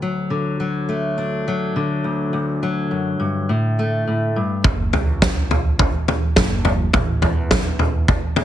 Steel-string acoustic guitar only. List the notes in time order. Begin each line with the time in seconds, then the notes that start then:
Already playing: D2
0.02 F#3
0.30 D3
0.60 F#3
0.89 A3
1.18 D4
1.48 F#3
1.76 D3
2.04 D2
2.33 D2
2.63 F#3
2.91 F#2
3.20 G2
3.49 A2
3.79 A3
4.07 A2
4.36 G2